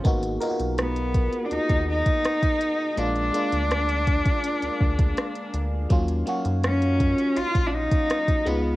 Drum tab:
HH |xxxxxxxxxx-xxxx-|xxxxxxxxxx-xxxx-|xxxxxxxxxx-xxxx-|
SD |----r-------r---|----r-------r---|----r-------r---|
BD |o-----o--o-o-o--|------oo--oo----|o-----o--o-o-o--|